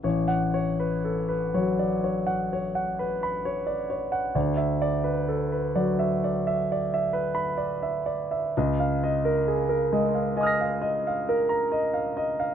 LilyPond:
<<
  \new Staff \with { instrumentName = "Grand piano" } { \time 9/8 \key d \lydian \tempo 4. = 43 << { r1 r8 | r1 r8 | r2 <gis'' dis''' eis''' ais'''>2~ <gis'' dis''' eis''' ais'''>8 | } \\ { cis''16 fis''16 cis''16 b'16 a'16 b'16 cis''16 d''16 cis''16 fis''16 cis''16 fis''16 b'16 b''16 cis''16 d''16 cis''16 fis''16 | d''16 e''16 d''16 b'16 a'16 b'16 d''16 e''16 d''16 e''16 d''16 e''16 b'16 b''16 d''16 e''16 d''16 e''16 | dis''16 eis''16 dis''16 ais'16 gis'16 ais'16 dis''16 eis''16 dis''16 eis''16 dis''16 eis''16 ais'16 ais''16 dis''16 eis''16 dis''16 eis''16 | } >> }
  \new Staff \with { instrumentName = "Grand piano" } { \clef bass \time 9/8 \key d \lydian a,,4. fis2~ fis8 r8 | d,4. fis2~ fis8 r8 | cis,4. gis2~ gis8 r8 | }
>>